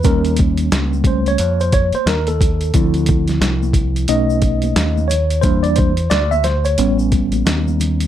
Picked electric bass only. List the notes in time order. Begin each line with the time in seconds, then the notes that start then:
0.04 D#2
0.72 C#2
1.39 F2
1.94 muted picked electric bass stroke
2.06 D#2
2.74 D2
3.41 C2
4.09 B1
4.76 D#2
5.44 E2
6.11 D2
6.79 A1
7.45 D#2